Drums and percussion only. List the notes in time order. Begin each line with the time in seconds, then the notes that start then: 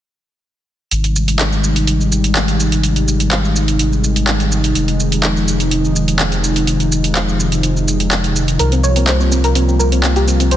0.91 closed hi-hat, shaker
1.04 closed hi-hat, shaker
1.16 shaker
1.28 closed hi-hat, shaker
1.39 clap, closed hi-hat, shaker
1.53 shaker
1.64 shaker
1.76 closed hi-hat, shaker
1.87 closed hi-hat, shaker
2.01 shaker
2.12 shaker
2.24 closed hi-hat, shaker
2.35 clap, closed hi-hat, shaker
2.48 closed hi-hat, shaker
2.60 shaker
2.72 closed hi-hat, shaker
2.83 closed hi-hat, shaker
2.96 closed hi-hat, shaker
3.08 shaker
3.20 closed hi-hat, shaker
3.31 clap, closed hi-hat, shaker
3.45 shaker
3.56 shaker
3.68 closed hi-hat, shaker
3.79 closed hi-hat, shaker
3.93 shaker
4.04 shaker
4.16 closed hi-hat, shaker
4.27 clap, closed hi-hat, shaker
4.40 closed hi-hat, shaker
4.52 shaker
4.64 closed hi-hat, shaker
4.75 closed hi-hat, shaker
4.88 closed hi-hat, shaker
5.00 shaker
5.12 closed hi-hat, shaker
5.23 clap, closed hi-hat, shaker
5.37 shaker
5.48 shaker
5.60 closed hi-hat, shaker
5.71 closed hi-hat, shaker
5.85 shaker
5.96 shaker
6.08 closed hi-hat, shaker
6.19 clap, closed hi-hat, shaker
6.32 closed hi-hat, shaker
6.44 shaker
6.56 closed hi-hat, shaker
6.67 closed hi-hat, shaker
6.80 closed hi-hat, shaker
6.92 shaker
7.04 closed hi-hat, shaker
7.15 clap, closed hi-hat, shaker
7.29 shaker
7.40 shaker
7.52 closed hi-hat, shaker
7.63 closed hi-hat, shaker
7.77 shaker
7.88 shaker
8.00 closed hi-hat, shaker
8.11 clap, closed hi-hat, shaker
8.24 closed hi-hat, shaker
8.36 shaker
8.48 closed hi-hat, shaker
8.59 closed hi-hat, shaker
8.72 closed hi-hat, shaker
8.84 shaker
8.96 closed hi-hat, shaker
9.07 clap, closed hi-hat, shaker
9.21 shaker
9.32 shaker
9.44 closed hi-hat, shaker
9.55 closed hi-hat, shaker
9.69 shaker
9.80 shaker
9.92 closed hi-hat, shaker
10.03 clap, closed hi-hat, shaker
10.16 closed hi-hat, shaker
10.28 shaker
10.40 closed hi-hat, shaker
10.51 closed hi-hat, shaker